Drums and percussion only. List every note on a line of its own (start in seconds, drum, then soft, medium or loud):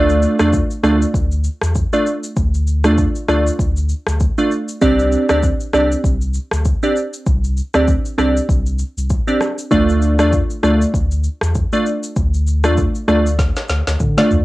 0.09 shaker medium
0.22 shaker medium
0.39 cross-stick loud
0.39 shaker medium
0.53 kick medium
0.53 shaker medium
0.71 shaker medium
0.84 cross-stick loud
0.84 shaker medium
1.02 shaker medium
1.14 kick loud
1.14 shaker medium
1.32 shaker medium
1.44 shaker medium
1.62 cross-stick loud
1.62 shaker loud
1.75 kick medium
1.75 shaker medium
1.93 shaker medium
2.07 shaker soft
2.24 shaker loud
2.37 kick loud
2.37 shaker medium
2.54 shaker medium
2.67 shaker medium
2.84 cross-stick loud
2.84 shaker medium
2.98 kick medium
2.98 shaker medium
3.15 shaker medium
3.29 cross-stick loud
3.29 shaker soft
3.47 shaker medium
3.59 kick loud
3.59 shaker medium
3.77 shaker medium
3.89 shaker medium
4.07 cross-stick loud
4.07 shaker loud
4.20 kick medium
4.20 shaker medium
4.38 shaker medium
4.51 shaker soft
4.68 shaker loud
4.81 kick loud
4.81 shaker medium
4.99 shaker medium
5.12 shaker medium
5.29 cross-stick loud
5.29 shaker medium
5.43 kick medium
5.43 shaker medium
5.60 shaker medium
5.73 cross-stick medium
5.73 shaker medium
5.92 shaker medium
6.04 kick loud
6.04 shaker medium
6.21 shaker medium
6.34 shaker medium
6.51 cross-stick loud
6.51 shaker loud
6.65 kick medium
6.65 shaker medium
6.83 shaker medium
6.96 shaker soft
7.14 shaker loud
7.26 kick loud
7.26 shaker medium
7.44 shaker medium
7.57 shaker medium
7.74 cross-stick loud
7.74 shaker medium
7.88 kick medium
7.88 shaker medium
8.05 shaker medium
8.18 cross-stick loud
8.18 shaker soft
8.37 shaker medium
8.49 kick loud
8.49 shaker medium
8.66 shaker medium
8.79 shaker medium
8.98 shaker loud
9.10 kick medium
9.10 shaker medium
9.28 shaker soft
9.41 cross-stick medium
9.41 shaker soft
9.58 shaker loud
9.71 kick loud
9.71 shaker medium
9.89 shaker medium
10.02 shaker medium
10.19 cross-stick loud
10.19 shaker medium
10.33 kick loud
10.33 shaker medium
10.50 shaker medium
10.63 cross-stick loud
10.63 shaker medium
10.82 shaker medium
10.94 kick loud
10.94 shaker medium
11.11 shaker medium
11.24 shaker medium
11.41 cross-stick loud
11.41 shaker loud
11.55 kick medium
11.55 shaker medium
11.73 shaker medium
11.86 shaker soft
12.03 shaker loud
12.16 kick loud
12.16 shaker medium
12.34 shaker medium
12.47 shaker medium
12.64 cross-stick loud
12.64 shaker medium
12.77 kick medium
12.77 shaker medium
12.95 shaker medium
13.08 cross-stick loud
13.08 shaker soft
13.27 shaker medium
13.39 kick loud
13.39 snare medium
13.39 shaker medium
13.56 snare medium
13.56 shaker medium
13.69 snare medium
13.69 shaker medium
13.87 snare medium
13.87 shaker loud
14.00 kick medium
14.00 mid tom medium
14.00 shaker medium
14.18 snare medium
14.18 shaker medium
14.31 floor tom medium
14.31 shaker soft